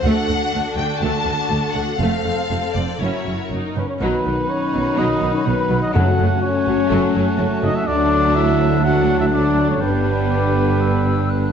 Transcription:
0.03 double bass section D2, cello section D2, viola section A3 D4, violin section F#4 A4 F#5
0.28 double bass section D2, cello section D2, viola section A3
0.53 cello section D2, double bass section D2, viola section A3
0.77 cello section D2, double bass section D2, viola section A3, violin section G5
0.99 cello section D2, double bass section D2, viola section A3, violin section A5
1.26 double bass section D2, cello section D2, viola section A3
1.50 cello section D2, double bass section D2, viola section A3
1.72 cello section D2, double bass section D2, viola section A3, violin section F#5
1.97 double bass section F1, cello section F2, viola section A3 C4, violin section A4 F5
2.24 double bass section F1, cello section F2, viola section A3
2.49 double bass section F1, cello section F2, viola section A3
2.73 double bass section F1, cello section F2, viola section A3, violin section D5
3.00 double bass section F#1, cello section F#2, viola section C#4 E4, violin section F#4 A#4 C#5
3.25 double bass section F#1, cello section F#2, viola section C#4
3.50 double bass section F#1, cello section F#2, viola section D#4
3.75 double bass section F#1, cello section F#2, french horn section B3, viola section C#4, trumpet B4
3.89 french horn section C#4, trumpet C#5
4.00 double bass section B1, cello section B2, trombone section D#3 F#3, viola section F#3, french horn section B3, clarinet D#4, violin section D#4, trumpet B4, oboe F#5, flute B5
4.25 double bass section B1, cello section B2, viola section F#3, violin section B3
4.48 french horn section C#4, trumpet C#5
4.73 double bass section B1, cello section B2, viola section F#3, violin section B3
4.96 double bass section B1, cello section B2, trombone section D#3 F#3, viola section F#3, violin section D#4, french horn section D#4, trumpet D#5
5.21 double bass section B1, cello section B2, viola section F#3, violin section B3
5.34 french horn section C#4, trumpet C#5
5.45 double bass section B1, cello section B2, trombone section D#3 F#3, viola section F#3, violin section B3, french horn section B3, trumpet B4
5.69 double bass section B1, cello section B2, viola section F#3, violin section B3
5.82 french horn section D#4, trumpet D#5
5.92 double bass section F#1, cello section F#2, timpani F#2, trombone section F#3 A3, viola section F#3, violin section A3, french horn section F#4, clarinet F#4, trumpet F#5, flute A5
5.96 violin section C#4
6.16 cello section F#2, viola section F#3, violin section A3
6.20 double bass section F#1
6.42 trombone section F#3 A3, french horn section C#4, trumpet C#5
6.65 double bass section F#1, cello section F#2, viola section F#3, violin section A3
6.87 violin section A3
6.91 double bass section F#1, cello section F#2, viola section F#3
7.13 double bass section F#1, cello section F#2, viola section F#3, violin section A3
7.36 double bass section F#1, cello section F#2, viola section F#3, violin section A3
7.62 double bass section F#1, cello section F#2, viola section F#3, violin section A3, french horn section D#4, trumpet D#5
7.75 french horn section E4, trumpet E5
7.85 cello section D2, double bass section D2, trombone section F#3 A3, viola section F#3, violin section A3 D4, french horn section D4, clarinet D4, trumpet D5, oboe F#5
8.35 french horn section E4, trumpet E5
8.83 viola section F#3, trombone section F#3 A3, violin section A3 D4, french horn section F#4, trumpet F#5
9.20 french horn section E4, trumpet E5
9.32 viola section F#3, trombone section F#3 A3, violin section A3 D4, french horn section D4, trumpet D5
9.69 french horn section C#4, trumpet C#5
9.80 double bass section G1, cello section G2, trombone section D3 G3, viola section G3, french horn section B3, violin section B3 D4, trumpet B4, oboe G5, flute B5
10.30 flute D6
10.80 flute E6
11.29 flute F#6

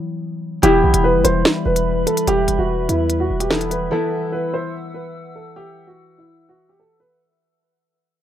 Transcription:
Already playing: harp E3 F#3 B3 E4
0.62 808-style bass E1, harp E3 G3 B3 E4, ambient pad G3 B4 E5 B5, grand piano G4, closed hi-hat
0.84 808-style bass B1
0.94 808-style bass E1, closed hi-hat
1.04 grand piano B4
1.14 808-style bass F#1
1.24 808-style bass E1, grand piano C5, closed hi-hat
1.45 snare
1.66 808-style bass E1, grand piano B4
1.76 closed hi-hat
2.07 grand piano A4, closed hi-hat
2.17 closed hi-hat
2.27 808-style bass E1, grand piano G4, closed hi-hat
2.48 808-style bass E1, closed hi-hat
2.58 808-style bass E1, grand piano F#4
2.89 808-style bass E2, grand piano E4, closed hi-hat
3.10 closed hi-hat
3.20 grand piano F#4
3.30 808-style bass E1
3.40 grand piano G4, closed hi-hat
3.50 harp E3 G3 B3 E4, grand piano A4, snare
3.61 closed hi-hat
3.70 grand piano B4, closed hi-hat
3.91 harp E3 B3 E4, grand piano A4, ambient pad F#5 E6
4.32 grand piano B4
4.54 grand piano C5
4.94 grand piano B4
5.36 grand piano A4
5.56 grand piano G4
5.87 grand piano F#4
6.18 grand piano E4
6.49 grand piano F#4
6.69 grand piano G4
6.80 grand piano A4
7.00 grand piano B4

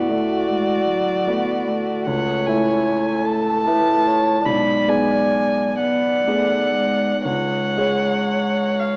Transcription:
Already playing: grand piano A2 A3 F#4 D5, cello B3, violin F#4 D5
0.09 grand piano A3 F#4 D5, cello A3
0.49 cello G#3
0.88 cello F#3
1.27 grand piano A3 F#4 D5, cello B3
1.68 cello A3
2.07 grand piano C#2, violin C#5 F#5
2.46 grand piano A3 E4 E5, violin G#5
3.25 violin A4 A5
3.66 grand piano A3 E4 E5, violin B4
4.07 violin C#5
4.45 grand piano B1, cello G#3, violin D5 B5
4.88 grand piano B3 G#4 D5, violin G#5
5.78 cello B3, violin D5 F#5
6.28 cello A3, grand piano B3 G#4 D5
6.74 cello G#3
7.25 grand piano C#2, cello G#3, violin C#5 F#5
7.77 grand piano G#3 G#4 C#5
8.80 violin F5

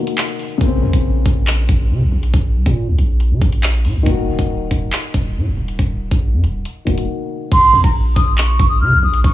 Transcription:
Already playing: grand piano D#3 A#3 F#4
0.07 closed hi-hat
0.18 clap
0.28 closed hi-hat
0.39 open hi-hat
0.58 808-style bass A#1, grand piano C#3 A#3, kick, closed hi-hat
0.65 grand piano C4
0.83 808-style bass F2
0.93 808-style bass A#1, kick, closed hi-hat
1.26 808-style bass A#1, kick, closed hi-hat
1.47 clap, closed hi-hat
1.69 808-style bass A#1, kick, closed hi-hat
1.90 808-style bass C#3
2.01 808-style bass A#1
2.12 808-style bass A#1
2.23 closed hi-hat
2.34 808-style bass A#1, kick, closed hi-hat
2.55 808-style bass C2
2.66 808-style bass A#2, kick, closed hi-hat
2.88 808-style bass C#2
2.98 808-style bass A#1, closed hi-hat
3.20 closed hi-hat
3.31 808-style bass C#3
3.42 808-style bass A#1, kick, closed hi-hat
3.52 closed hi-hat
3.63 clap
3.74 closed hi-hat
3.85 808-style bass A#2, open hi-hat
3.96 808-style bass A#1
4.03 808-style bass D#1, grand piano D#3 A#3, kick, closed hi-hat
4.10 grand piano F#4
4.28 808-style bass D#1
4.39 808-style bass D#1, kick, closed hi-hat
4.71 808-style bass D#1, kick, closed hi-hat
4.93 clap, closed hi-hat
5.14 808-style bass D#1, kick, closed hi-hat
5.36 808-style bass A#2
5.47 808-style bass D#1
5.57 808-style bass D#1
5.68 closed hi-hat
5.79 808-style bass D#1, kick, closed hi-hat
6.11 808-style bass A#1, kick, closed hi-hat
6.33 808-style bass F#2
6.44 808-style bass D#1, closed hi-hat
6.65 closed hi-hat
6.85 808-style bass D#1, grand piano D#3 A#3 F#4, kick, closed hi-hat
6.98 closed hi-hat
7.52 808-style bass A#1, flute C6, kick, closed hi-hat, crash
7.73 808-style bass F2
7.84 808-style bass A#1, flute A#5, kick, closed hi-hat
8.16 808-style bass A#1, flute D#6, kick, closed hi-hat
8.38 flute C#6, clap, closed hi-hat
8.59 808-style bass A#1, kick, closed hi-hat
8.69 flute D#6
8.81 808-style bass C#3, flute F6
8.92 808-style bass A#1
9.03 808-style bass A#1, flute D#6
9.14 closed hi-hat
9.24 808-style bass A#1, flute C#6, kick, closed hi-hat

